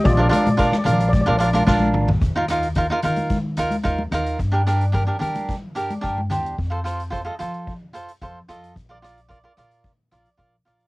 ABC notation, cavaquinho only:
X:1
M:4/4
L:1/16
Q:1/4=110
K:Eb
V:1 name="Cavaquinho"
z [DFB] [DFB] z [DFB] z [DFB]2 z [DFB] [DFB] [DFB] [DFB]3 z | z [EFB] [EFB] z [EFB] [EFB] [EFB]2 z2 [EFB] z [EFB] z [EFB]2 | z [DGB] [DGB] z [DGB] [DGB] [DGB]2 z2 [DGB] z [DGB] z [DGc]2 | z [F=Ac] [FAc] z [FAc] [FAe] [FAc]2 z2 [FAc] z [FAc] z [FAe]2 |
z [FBd] [FBd] z [FBd] [FBd] [FBd]2 z2 [FBd] z [FBd] z [FBd]2 |]